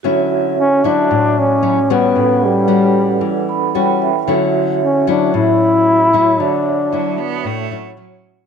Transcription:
<<
  \new Staff \with { instrumentName = "Vibraphone" } { \time 4/4 \key d \major \tempo 4 = 114 << { r1 | r2 r8 b''8 g''8 e''8 | r1 | r1 | } \\ { <fis' cis'' e''>1 | <cis' a' b' fis''>1 | <fis' cis'' e''>1 | <fis' cis'' e''>2~ <fis' cis'' e''>8 <fis' cis'' fis''>4. | } >> }
  \new Staff \with { instrumentName = "Nylon-string guitar" } { \time 4/4 \key d \major << { <fis cis' e'>4 r8 <fis e'>4. <fis cis' e'>8 <g cis' fis'>8~ | <g cis' fis'>4 <g cis' fis'>4. r8 <g cis' fis'>8 r8 | <fis cis' e'>4 r8 <fis cis' e'>2 <fis e'>8~ | <fis e'>4 <fis e'>4 r8 <fis cis' e'>8 <fis cis' e'>4 | } \\ { d2 a,2 | a,2 e2 | d2 a,2 | d2 a,2 | } >> }
  \new Staff \with { instrumentName = "Trombone" } { \time 4/4 \key d \major r4 cis'8 d'4 cis'4 b8~ | b8 g2 r4. | r4 cis'8 d'8 e'2 | d'2. r4 | }
  \new Staff \with { instrumentName = "Cello" } { \clef bass \time 4/4 \key d \major r1 | r1 | r1 | r4 fis8 b8 a4 fis4 | }
>>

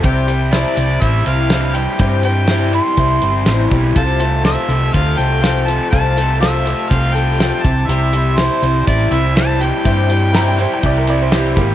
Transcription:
<<
  \new Staff \with { instrumentName = "Harmonica" } { \time 4/4 \key c \major \tempo 4 = 122 g''4 d''4 e''8 f''4 g''8~ | g''8 g''4 c'''2 r8 | a''4 e''4 f''8 g''4 a''8 | a''4 e''4 f''8 g''4 a''8 |
e''4 c''4 d''8 e''8 a''8 g''8~ | g''2. r4 | }
  \new Staff \with { instrumentName = "Upright piano" } { \time 4/4 \key c \major r1 | r1 | r1 | r1 |
r1 | r4 bes''16 g''16 c''16 g''16 d''16 bes'16 d''16 c''16 g'8 <bes g'>8 | }
  \new Staff \with { instrumentName = "Twelve-string acoustic guitar" } { \time 4/4 \key c \major <c g c' e' g'>8 <c' e' g'>8 <c g c' e' g'>8 <c' e' g'>8 <g c' e' g'>8 <c' e' g'>8 <c g c' e' g'>8 <c' e' g'>8 | <c g c' e' g'>8 <c' e' g'>8 <c g c' e' g'>8 <c' e' g'>8 <g c' e' g'>8 <c' e' g'>8 <c g c' e' g'>8 <c' e' g'>8 | <c f c' f' a'>8 <c' f' a'>8 <c f c' f' a'>8 <c' f' a'>8 <f c' f' a'>8 <c' f' a'>8 <c f c' f' a'>8 <c' f' a'>8 | <c f c' f' a'>8 <c' f' a'>8 <c f c' f' a'>8 <c' f' a'>8 <f c' f' a'>8 <c' f' a'>8 <c f c' f' a'>8 <c' e' g'>8 |
<c g c' e' g'>8 <c' e' g'>8 <c g c' e' g'>8 <c' e' g'>8 <g c' e' g'>8 <c' e' g'>8 <c g c' e' g'>8 <c' e' g'>8 | <c g c' e' g'>8 <c' e' g'>8 <c g c' e' g'>8 <c' e' g'>8 <g c' e' g'>8 <c' e' g'>8 <c g c' e' g'>8 <c' e' g'>8 | }
  \new Staff \with { instrumentName = "Overdriven electric guitar" } { \time 4/4 \key c \major c8 g8 e'8 c'8 e'8 c'8 e8 g8 | c8 g8 e'8 c'8 e'8 c'8 e8 g8 | c8 a8 f'8 c'8 f'8 c'8 f8 a8 | c8 a8 f'8 c'8 f'8 c'8 f8 c8 |
c8 g8 e'8 c'8 e'8 c'8 e8 g8 | c8 g8 e'8 c'8 e'8 c'8 e8 g8 | }
  \new Staff \with { instrumentName = "Fingered electric bass" } { \clef bass \time 4/4 \key c \major c,4. c,8 a,,8 c,4. | g,2 c,8 g,,8 a,,8 b,,8 | c,4. c,8 d,8 c,4. | c,2 c,4. c,8 |
c,4. c,8 a,,8 c,4. | g,2 c,4. aes,,8 | }
  \new DrumStaff \with { instrumentName = "Drums" } \drummode { \time 4/4 <hh bd>8 hh8 <hh sn>8 hh8 <hh bd>8 hh8 <hh sn>8 hh8 | <hh bd>8 hh8 <hh sn>8 hh8 <hh bd>8 hh8 <hh sn>8 <hh bd>8 | <hh bd>8 hh8 <hh sn>8 hh8 <hh bd>8 hh8 <hh sn>8 hh8 | <hh bd>8 hh8 <hh sn>8 hh8 <hh bd>8 hh8 <hh sn>8 <hh bd>8 |
hh8 hh8 <hh sn>8 hh8 <hh bd>8 hh8 <hh sn>8 hh8 | <hh bd>8 hh8 <hh sn>8 hh8 <hh bd>8 hh8 <hh sn>8 <hh bd>8 | }
>>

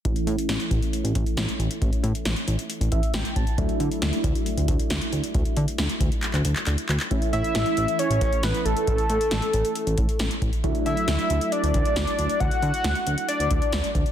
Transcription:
<<
  \new Staff \with { instrumentName = "Analog synth lead" } { \time 4/4 \key a \major \tempo 4 = 136 r1 | r1 | r1 | r1 |
r8 e''4. cis''4 b'8 a'8~ | a'2.~ a'8 r8 | r8 e''4. d''2 | fis''2 d''4. r8 | }
  \new Staff \with { instrumentName = "Synth keys" } { \time 4/4 \key a \major << { r1 | r2 r8 e''8 g''8 a''8 | r1 | r1 |
r1 | r1 | r1 | r1 | } \\ { <e a cis' e'>1~ | <e a cis' e'>1 | <fis a d' e'>1~ | <fis a d' e'>1 |
<e a cis' e'>1~ | <e a cis' e'>1 | <fis a d' e'>1~ | <fis a d' e'>1 | } >> }
  \new Staff \with { instrumentName = "Analog synth bass" } { \clef bass \time 4/4 \key a \major a,,16 r16 a,16 r16 a,,16 r16 a,,16 r8 a,,16 a,,16 r16 a,,16 r16 a,,16 r16 | a,,16 r16 a,16 r16 a,,16 r16 a,,16 r8 a,,16 a,,16 r16 a,,16 r16 a,,16 r16 | d,16 r16 d16 r16 d,16 r16 d,16 r8 d,16 d,16 r16 d,16 r16 d,16 r16 | d,16 r16 d16 r16 d,16 r16 d,16 r8 d,16 d,16 r16 d,16 r16 d,16 r16 |
a,,16 r16 a,16 r16 a,,16 r16 a,,16 r8 a,,16 a,,16 r16 a,,16 r16 a,,16 r16 | a,,16 r16 a,16 r16 a,,16 r16 a,,16 r8 a,,16 a,,16 r16 a,,16 r16 a,,16 r16 | d,16 r16 d16 r16 d,16 r16 d,16 r8 d,16 d,16 r16 d,16 r16 d,16 r16 | d,16 r16 d16 r16 d,16 r16 d,16 r8 d,16 d,16 r16 d,16 r16 d,16 r16 | }
  \new DrumStaff \with { instrumentName = "Drums" } \drummode { \time 4/4 <hh bd>16 hh16 hh16 hh16 <hh sn>16 hh16 <hh bd>16 hh16 hh16 hh16 <hh bd>16 hh16 <hh sn>16 hh16 hh16 hh16 | <hh bd>16 hh16 hh16 hh16 <hh sn>16 hh16 hh16 hh16 hh16 hh16 <hh bd>16 hh16 <hh sn>16 hh16 <hh bd>16 hh16 | <hh bd>16 hh16 hh16 hh16 <hh sn>16 hh16 <hh bd>16 hh16 hh16 hh16 <hh bd>16 hh16 <hh sn>16 hh16 hh16 hh16 | <hh bd>16 hh16 hh16 hh16 <hh sn>16 hh16 <hh bd>16 hh16 <hc hh>16 <hc hh>16 hh16 <hc hh>16 <hc hh>16 hh16 <hc hh>16 <hc hh>16 |
<hh bd>16 hh16 hh16 hh16 <hh sn>16 hh16 hh16 hh16 hh16 hh16 <hh bd>16 hh16 <hh sn>16 hh16 hh16 hh16 | <hh bd>16 hh16 hh16 hh16 <hh sn>16 hh16 hh16 hh16 hh16 hh16 <hh bd>16 hh16 <hh sn>16 hh16 <hh bd>16 hh16 | <hh bd>16 hh16 hh16 hh16 <hh sn>16 hh16 hh16 hh16 hh16 hh16 <hh bd>16 hh16 <hh sn>16 hh16 hh16 hh16 | <hh bd>16 hh16 hh16 hh16 <hh sn>16 hh16 hh16 hh16 hh16 hh16 <hh bd>16 hh16 <hh sn>16 hh16 <hh bd>16 hh16 | }
>>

